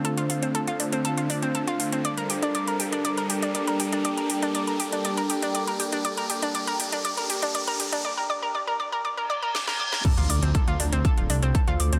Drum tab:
CC |----------------|----------------|----------------|----------------|
HH |xxoxxxoxxxoxxxox|xxoxxxoxxxoxxxox|xxoxxxoxxxoxxxox|xxoxxxoxxxoxxxox|
SD |----------------|----------------|----------------|----------------|
BD |----------------|----------------|----------------|----------------|

CC |----------------|x---------------|
HH |----------------|xxoxxxoxxxoxxxox|
SD |------------oo-o|----------------|
BD |----------------|o---o---o---o---|